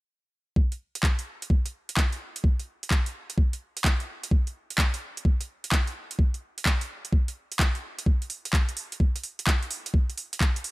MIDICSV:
0, 0, Header, 1, 2, 480
1, 0, Start_track
1, 0, Tempo, 468750
1, 578, Time_signature, 4, 2, 24, 8
1, 10969, End_track
2, 0, Start_track
2, 0, Title_t, "Drums"
2, 576, Note_on_c, 9, 36, 106
2, 678, Note_off_c, 9, 36, 0
2, 736, Note_on_c, 9, 42, 31
2, 839, Note_off_c, 9, 42, 0
2, 975, Note_on_c, 9, 42, 56
2, 1056, Note_on_c, 9, 36, 105
2, 1057, Note_on_c, 9, 39, 108
2, 1078, Note_off_c, 9, 42, 0
2, 1159, Note_off_c, 9, 36, 0
2, 1160, Note_off_c, 9, 39, 0
2, 1216, Note_on_c, 9, 42, 46
2, 1319, Note_off_c, 9, 42, 0
2, 1456, Note_on_c, 9, 42, 57
2, 1537, Note_on_c, 9, 36, 108
2, 1559, Note_off_c, 9, 42, 0
2, 1639, Note_off_c, 9, 36, 0
2, 1696, Note_on_c, 9, 42, 45
2, 1798, Note_off_c, 9, 42, 0
2, 1936, Note_on_c, 9, 42, 60
2, 2017, Note_on_c, 9, 36, 108
2, 2017, Note_on_c, 9, 39, 106
2, 2038, Note_off_c, 9, 42, 0
2, 2119, Note_off_c, 9, 36, 0
2, 2119, Note_off_c, 9, 39, 0
2, 2176, Note_on_c, 9, 42, 31
2, 2278, Note_off_c, 9, 42, 0
2, 2416, Note_on_c, 9, 42, 61
2, 2497, Note_on_c, 9, 36, 112
2, 2519, Note_off_c, 9, 42, 0
2, 2600, Note_off_c, 9, 36, 0
2, 2657, Note_on_c, 9, 42, 29
2, 2760, Note_off_c, 9, 42, 0
2, 2898, Note_on_c, 9, 42, 55
2, 2977, Note_on_c, 9, 36, 103
2, 2978, Note_on_c, 9, 39, 111
2, 3000, Note_off_c, 9, 42, 0
2, 3080, Note_off_c, 9, 36, 0
2, 3080, Note_off_c, 9, 39, 0
2, 3136, Note_on_c, 9, 42, 45
2, 3239, Note_off_c, 9, 42, 0
2, 3376, Note_on_c, 9, 42, 54
2, 3457, Note_on_c, 9, 36, 110
2, 3479, Note_off_c, 9, 42, 0
2, 3560, Note_off_c, 9, 36, 0
2, 3617, Note_on_c, 9, 42, 45
2, 3719, Note_off_c, 9, 42, 0
2, 3857, Note_on_c, 9, 42, 59
2, 3937, Note_on_c, 9, 36, 113
2, 3938, Note_on_c, 9, 39, 112
2, 3959, Note_off_c, 9, 42, 0
2, 4040, Note_off_c, 9, 36, 0
2, 4040, Note_off_c, 9, 39, 0
2, 4097, Note_on_c, 9, 42, 31
2, 4200, Note_off_c, 9, 42, 0
2, 4337, Note_on_c, 9, 42, 59
2, 4417, Note_on_c, 9, 36, 115
2, 4439, Note_off_c, 9, 42, 0
2, 4519, Note_off_c, 9, 36, 0
2, 4578, Note_on_c, 9, 42, 30
2, 4680, Note_off_c, 9, 42, 0
2, 4817, Note_on_c, 9, 42, 56
2, 4897, Note_on_c, 9, 36, 115
2, 4898, Note_on_c, 9, 39, 116
2, 4920, Note_off_c, 9, 42, 0
2, 4999, Note_off_c, 9, 36, 0
2, 5000, Note_off_c, 9, 39, 0
2, 5058, Note_on_c, 9, 42, 46
2, 5160, Note_off_c, 9, 42, 0
2, 5297, Note_on_c, 9, 42, 57
2, 5376, Note_on_c, 9, 36, 112
2, 5399, Note_off_c, 9, 42, 0
2, 5479, Note_off_c, 9, 36, 0
2, 5536, Note_on_c, 9, 42, 45
2, 5638, Note_off_c, 9, 42, 0
2, 5776, Note_on_c, 9, 42, 57
2, 5856, Note_on_c, 9, 36, 110
2, 5856, Note_on_c, 9, 39, 112
2, 5878, Note_off_c, 9, 42, 0
2, 5958, Note_off_c, 9, 36, 0
2, 5958, Note_off_c, 9, 39, 0
2, 6015, Note_on_c, 9, 42, 30
2, 6117, Note_off_c, 9, 42, 0
2, 6255, Note_on_c, 9, 42, 56
2, 6336, Note_on_c, 9, 36, 109
2, 6358, Note_off_c, 9, 42, 0
2, 6439, Note_off_c, 9, 36, 0
2, 6494, Note_on_c, 9, 42, 31
2, 6597, Note_off_c, 9, 42, 0
2, 6736, Note_on_c, 9, 42, 54
2, 6816, Note_on_c, 9, 36, 107
2, 6817, Note_on_c, 9, 39, 113
2, 6838, Note_off_c, 9, 42, 0
2, 6919, Note_off_c, 9, 36, 0
2, 6920, Note_off_c, 9, 39, 0
2, 6976, Note_on_c, 9, 42, 44
2, 7079, Note_off_c, 9, 42, 0
2, 7217, Note_on_c, 9, 42, 55
2, 7296, Note_on_c, 9, 36, 111
2, 7319, Note_off_c, 9, 42, 0
2, 7399, Note_off_c, 9, 36, 0
2, 7457, Note_on_c, 9, 42, 46
2, 7559, Note_off_c, 9, 42, 0
2, 7696, Note_on_c, 9, 42, 56
2, 7776, Note_on_c, 9, 36, 110
2, 7778, Note_on_c, 9, 39, 109
2, 7799, Note_off_c, 9, 42, 0
2, 7879, Note_off_c, 9, 36, 0
2, 7881, Note_off_c, 9, 39, 0
2, 7937, Note_on_c, 9, 42, 30
2, 8040, Note_off_c, 9, 42, 0
2, 8177, Note_on_c, 9, 42, 62
2, 8257, Note_on_c, 9, 36, 111
2, 8279, Note_off_c, 9, 42, 0
2, 8359, Note_off_c, 9, 36, 0
2, 8416, Note_on_c, 9, 42, 32
2, 8498, Note_on_c, 9, 46, 91
2, 8518, Note_off_c, 9, 42, 0
2, 8600, Note_off_c, 9, 46, 0
2, 8656, Note_on_c, 9, 42, 60
2, 8737, Note_on_c, 9, 36, 109
2, 8737, Note_on_c, 9, 39, 109
2, 8759, Note_off_c, 9, 42, 0
2, 8839, Note_off_c, 9, 36, 0
2, 8839, Note_off_c, 9, 39, 0
2, 8895, Note_on_c, 9, 42, 47
2, 8977, Note_on_c, 9, 46, 95
2, 8998, Note_off_c, 9, 42, 0
2, 9080, Note_off_c, 9, 46, 0
2, 9135, Note_on_c, 9, 42, 59
2, 9217, Note_on_c, 9, 36, 103
2, 9238, Note_off_c, 9, 42, 0
2, 9319, Note_off_c, 9, 36, 0
2, 9376, Note_on_c, 9, 42, 47
2, 9457, Note_on_c, 9, 46, 90
2, 9478, Note_off_c, 9, 42, 0
2, 9559, Note_off_c, 9, 46, 0
2, 9616, Note_on_c, 9, 42, 63
2, 9696, Note_on_c, 9, 36, 106
2, 9698, Note_on_c, 9, 39, 109
2, 9718, Note_off_c, 9, 42, 0
2, 9799, Note_off_c, 9, 36, 0
2, 9800, Note_off_c, 9, 39, 0
2, 9856, Note_on_c, 9, 42, 31
2, 9938, Note_on_c, 9, 46, 98
2, 9959, Note_off_c, 9, 42, 0
2, 10041, Note_off_c, 9, 46, 0
2, 10097, Note_on_c, 9, 42, 61
2, 10176, Note_on_c, 9, 36, 108
2, 10200, Note_off_c, 9, 42, 0
2, 10279, Note_off_c, 9, 36, 0
2, 10338, Note_on_c, 9, 42, 34
2, 10419, Note_on_c, 9, 46, 93
2, 10440, Note_off_c, 9, 42, 0
2, 10522, Note_off_c, 9, 46, 0
2, 10577, Note_on_c, 9, 42, 64
2, 10656, Note_on_c, 9, 36, 102
2, 10658, Note_on_c, 9, 39, 107
2, 10679, Note_off_c, 9, 42, 0
2, 10759, Note_off_c, 9, 36, 0
2, 10760, Note_off_c, 9, 39, 0
2, 10816, Note_on_c, 9, 42, 51
2, 10898, Note_on_c, 9, 46, 96
2, 10919, Note_off_c, 9, 42, 0
2, 10969, Note_off_c, 9, 46, 0
2, 10969, End_track
0, 0, End_of_file